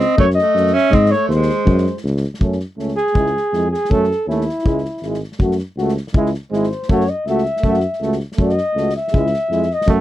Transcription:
0.00 0.17 C4 medium
0.00 0.18 D#5 medium
0.18 0.38 F#2 loud
0.18 0.26 A3 medium
0.18 0.28 C#5 loud
0.18 kick loud
0.30 snare soft
0.36 0.75 D#5 loud
0.36 snare soft
0.40 0.75 A3 medium
0.54 0.75 F#2 loud
0.54 snare soft
0.67 snare soft
0.73 0.96 C#4 loud
0.73 0.93 E5 loud
0.78 snare soft
0.91 1.11 G#2 loud
0.91 1.13 D#5 loud
0.91 kick loud
0.95 1.16 C4 medium
1.06 snare soft
1.11 1.31 A3 medium
1.11 1.28 C#5 loud
1.11 snare soft
1.28 1.49 D#2 loud
1.28 1.99 C5 medium
1.28 snare soft
1.35 2.02 G#3 medium
1.42 snare soft
1.49 snare soft
1.65 1.86 F#2 loud
1.65 kick medium
1.78 snare soft
1.86 snare soft
1.97 snare soft
2.04 2.24 C#2 loud
2.04 snare soft
2.17 snare soft
2.24 snare soft
2.34 snare soft
2.40 2.61 F#2 medium
2.40 2.56 A3 medium
2.40 2.58 C#4 medium
2.40 kick medium
2.52 snare soft
2.59 snare soft
2.77 2.98 C#2 medium
2.77 2.93 A3 medium
2.77 2.94 C#4 medium
2.77 snare soft
2.88 snare soft
2.96 3.67 G#4 loud
2.96 snare soft
3.07 snare soft
3.14 3.35 C#2 medium
3.14 3.29 G#3 medium
3.14 3.31 E4 medium
3.14 kick medium
3.26 snare soft
3.37 snare soft
3.52 3.73 F2 medium
3.52 3.68 G#3 medium
3.52 3.68 E4 medium
3.52 snare soft
3.71 3.92 G#4 loud
3.71 snare soft
3.85 snare soft
3.90 4.11 F#2 loud
3.90 4.06 A3 medium
3.90 4.06 C#4 medium
3.90 4.28 A4 loud
3.90 kick medium
4.04 snare soft
4.11 snare soft
4.27 4.48 D#2 medium
4.27 4.45 A3 medium
4.27 4.42 C#4 medium
4.27 5.18 E4 medium
4.27 snare soft
4.41 snare soft
4.49 snare soft
4.59 snare soft
4.63 4.85 C#2 medium
4.63 4.80 G#3 medium
4.63 4.78 E4 medium
4.63 kick medium
4.78 snare soft
4.85 snare soft
4.97 snare soft
5.02 5.22 G#1 medium
5.02 5.20 G#3 medium
5.02 5.17 E4 medium
5.02 snare soft
5.14 snare soft
5.24 snare soft
5.32 snare soft
5.39 5.60 F#2 medium
5.39 5.56 A3 medium
5.39 5.55 F#4 medium
5.39 kick medium
5.51 snare soft
5.59 snare soft
5.77 5.97 C#2 medium
5.77 5.95 A3 medium
5.77 5.92 F#4 medium
5.77 snare soft
5.89 snare soft
5.97 snare soft
6.07 snare soft
6.13 6.34 C#2 medium
6.13 6.30 G#3 medium
6.13 6.31 E4 medium
6.13 kick loud
6.26 snare soft
6.34 snare soft
6.51 6.72 G#1 medium
6.51 6.66 G#3 medium
6.51 6.68 E4 medium
6.51 6.92 C5 medium
6.51 snare soft
6.63 snare soft
6.71 snare soft
6.82 snare soft
6.89 7.09 F#2 medium
6.89 7.04 A3 medium
6.89 7.06 F#4 medium
6.89 7.11 C#5 medium
6.89 kick medium
7.00 snare soft
7.07 7.28 D#5 medium
7.07 snare soft
7.26 7.47 C#2 medium
7.26 7.43 A3 medium
7.26 7.43 F#4 medium
7.26 8.20 E5 medium
7.26 snare soft
7.38 snare soft
7.45 snare soft
7.56 snare soft
7.62 7.84 F#2 loud
7.62 7.77 A3 medium
7.62 kick medium
7.67 7.81 F#4 medium
7.74 snare soft
7.80 snare soft
7.93 snare soft
8.00 8.21 C#2 medium
8.00 8.16 A3 medium
8.00 snare soft
8.05 8.19 F#4 soft
8.12 snare soft
8.20 snare soft
8.32 snare soft
8.36 8.59 F#2 medium
8.36 8.52 A3 medium
8.36 kick medium
8.42 8.56 F#4 medium
8.42 8.92 D#5 loud
8.49 snare soft
8.58 snare soft
8.75 8.96 C#2 medium
8.75 8.90 A3 medium
8.75 snare soft
8.79 8.93 F#4 medium
8.89 snare soft
8.97 9.75 E5 medium
8.97 snare soft
9.08 9.27 G#3 medium
9.08 snare soft
9.12 9.33 C#2 loud
9.12 9.30 E4 medium
9.12 kick medium
9.26 snare soft
9.34 snare soft
9.49 9.70 F2 medium
9.49 9.65 G#3 medium
9.49 9.66 E4 medium
9.49 snare soft
9.63 snare soft
9.71 9.90 D#5 loud
9.71 snare soft
9.81 snare soft
9.86 10.01 F#2 loud
9.86 10.01 A3 medium
9.86 10.01 F#4 medium
9.86 kick medium

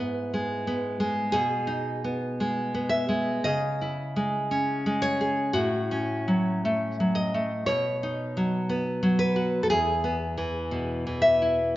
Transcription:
0.00 1.31 G#2 medium
0.00 0.32 G#3 medium
0.00 0.66 B3 medium
0.00 1.18 E4 medium
0.00 0.80 B4 loud
0.34 0.99 G#3 medium
0.67 1.35 B3 medium
1.00 1.34 G#3 medium
1.32 3.39 B2 medium
1.32 2.86 G#4 loud
1.67 3.25 D#4 medium
2.04 2.73 B3 medium
2.40 3.08 G#3 medium
2.74 3.45 B3 medium
2.89 3.41 E5 loud
3.09 3.44 G#3 medium
3.44 5.51 C#3 medium
3.44 4.98 D#5 loud
3.81 5.38 E4 medium
4.16 4.85 G#3 medium
4.51 5.56 C#4 medium
4.86 5.54 G#3 medium
5.02 5.53 C#5 loud
5.21 5.56 G#4 medium
5.53 7.63 A2 medium
5.53 7.11 F#4 loud
5.91 7.50 C#4 medium
6.28 6.65 F#3 medium
6.65 7.00 A3 medium
7.00 7.34 F#3 medium
7.15 7.65 D#5 loud
7.34 7.67 A3 medium
7.66 9.69 B2 medium
7.66 9.16 C#5 loud
8.03 9.56 D#4 medium
8.37 9.01 F#3 medium
8.69 9.35 B3 medium
9.03 9.72 F#3 medium
9.19 9.63 B4 loud
9.36 9.71 F#4 medium
9.63 9.69 A4 medium
9.70 11.73 E2 medium
9.70 11.18 G#4 loud
10.04 11.59 B3 medium
10.38 11.06 E3 medium
10.71 11.76 B2 medium
11.07 11.77 E3 medium
11.22 11.75 E5 loud
11.42 11.77 E4 medium

